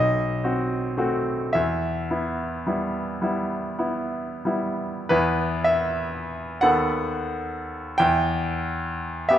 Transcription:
grand piano
Already playing: B1 D#5
0.44 C4 F#4
0.98 A3 C4 F#4
1.53 E2 E5
2.11 B3 E4
2.67 G3 B3 E4
3.22 G3 B3 E4
3.79 B3 E4
4.45 G3 B3 E4
5.09 E2 B3 E4 B4
5.64 E5
6.61 D#2 B3 A4 F#5
7.98 E2 G5
9.29 B3 G4 E5

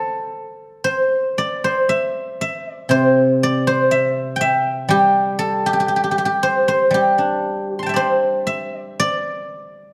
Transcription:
guzheng
Already playing: A4 C5 D5 E5
0.84 C5
1.38 D5
1.64 C5
1.89 E5
2.41 E5
2.72 D5
2.89 C3 C5
3.43 D5
3.67 C5
3.91 E5
4.36 G5
4.41 E5
4.89 G3 G4
5.39 A4
5.66 G4
5.73 G4
5.80 G4
5.88 G4
5.96 G4
6.04 G4
6.11 G4
6.18 G4
6.25 G4
6.43 C5
6.68 C5
6.91 G3 G4
7.18 D4
7.69 F#4
7.79 F4 A5 C6
7.86 E5 G5
7.94 E4 C5 D5
8.47 E5
8.79 D5
9.00 D5

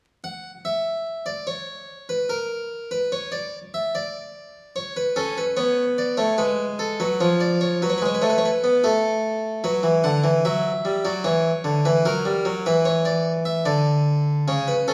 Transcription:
harpsichord
0.24 F#5
0.65 E5
1.26 D5
1.47 C#5
2.09 B4
2.29 A#4
2.91 B4
3.12 C#5
3.32 D5
3.74 E5
3.95 D5
4.76 C#5
4.97 B4
5.16 C#4 A4
5.38 B4
5.57 B3 C#5
5.98 D5
6.17 A3 C#5
6.38 G#3 B4
6.79 A4
7.00 F#3 B4
7.21 F3 C#5
7.40 D5
7.61 C#5
7.82 F#3 B4
7.90 C#5
7.98 B4
8.02 G#3 C#5
8.14 B4
8.22 A3 C#5
8.30 B4
8.38 C#5
8.45 B4
8.64 B3
8.84 A3 A4
9.64 F#3 B4
9.83 E3
10.04 D3 F#5
10.24 E3
10.45 F#3 E5
10.85 G3
11.05 F#3 D5
11.24 E3 C#5
11.64 D3
11.85 E3 B4
12.05 F#3 A#4
12.25 G3
12.45 F#3
12.66 E3 B4
12.85 C#5
13.05 D5
13.45 E5
13.65 D3 D5
14.48 C#3 C#5
14.68 B4
14.88 C#4 A4

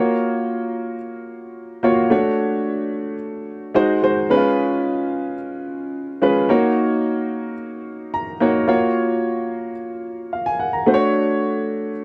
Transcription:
grand piano
Already playing: A#3 F4 F#4 C#5
1.83 A#3 F4 F#4 C#5
2.10 A3 D4 F#4 C#5
3.74 G#3 D#4 F#4 C5
4.02 G#3 D#4 F#4 C5
4.30 G#3 C#4 D#4 B4
4.37 F4
6.22 G#3 C#4 F4 B4
6.49 A#3 D#4 F#4 C#5
8.14 A#5
8.40 A#3 D#4 F#4 C#5 F#5
8.68 A#3 F4 F#4 C#5
10.33 F5
10.46 G#5
10.59 F#5
10.73 A#5
10.86 A3 D4 F#4 C5
10.94 C#5

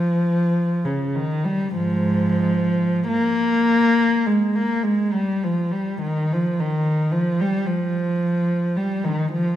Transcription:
cello
Already playing: F3
0.85 C#3
1.15 D#3
1.44 G3
1.75 G#2 F3
3.08 A#3
4.26 G#3
4.56 A#3
4.83 G#3
5.13 G3
5.44 F3
5.72 G3
6.02 D#3
6.32 F3
6.59 D#3
7.12 F3
7.41 G3
7.67 F3
8.76 G3
9.04 D#3
9.32 F3

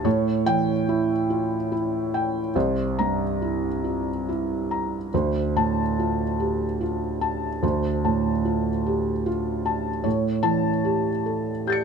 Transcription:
felt piano
0.04 A2 C#5
0.46 E3 G5
0.89 E4
1.30 F4
1.72 E4
2.14 G5
2.55 C2 C5
2.99 G2 A#5
3.42 E4
3.84 F4
4.29 E4
4.71 A#5
5.14 D2 C5
5.56 A2 A5
5.99 F4
6.40 G4
6.81 F4
7.21 A5
7.63 D2 C5
8.05 A2 A5
8.45 F4
8.86 G4
9.26 F4
9.66 A5
10.04 A2 C#5
10.43 E3 A5
10.85 G4
11.26 A4
11.67 G4 G6 A6
11.72 C#7

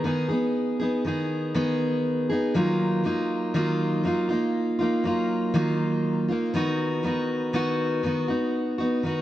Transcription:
steel-string acoustic guitar
0.04 D#3 B3 D#4 G#4
0.29 B3 D#4 G#4
0.79 B3 D#4 G#4
1.05 D#3 B3 D#4 G#4
1.54 D#3 B3 D#4 G#4
2.29 B3 D#4 G#4
2.54 D#3 F#3 A#3 D#4 F4
3.04 F#3 A#3 D#4 F4
3.54 D#3 F#3 A#3 D#4 F4
4.03 F#3 A#3 D#4 F4
4.29 A#3 D#4 F4
4.79 A#3 D#4 F4
5.04 F#3 A#3 D#4 F4
5.54 D#3 F#3 A#3 D#4 F4
6.28 A#3 D#4 F4
6.54 D#3 B3 D#4 F#4
7.03 D#3 B3 D#4 F#4
7.53 D#3 B3 D#4 F#4
8.03 D#3 B3 D#4 F#4
8.28 B3 D#4 F#4
8.78 B3 D#4 F#4
9.03 D#3 B3 D#4 F#4

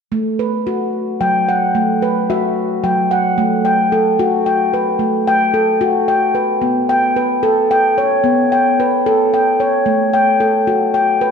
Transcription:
handpan
0.12 A3
0.39 B4
0.67 F#4
1.21 F#3 G5
1.49 F#5
1.75 A3
2.02 B4
2.30 F#4 E5
2.83 F#3 G5
3.11 F#5
3.38 A3
3.65 G5
3.92 A4
4.19 F#4
4.46 G5
4.74 B4
4.99 A3
5.27 G5
5.54 A4
5.81 F#4
6.08 G5
6.35 B4
6.62 B3
6.89 G5
7.16 B4
7.43 A4
7.71 G5
7.98 C#5
8.24 B3
8.52 G5
8.80 B4
9.06 A4
9.34 G5
9.60 C#5
9.86 A3
10.13 G5
10.40 A4
10.67 F#4
10.94 G5
11.21 B4

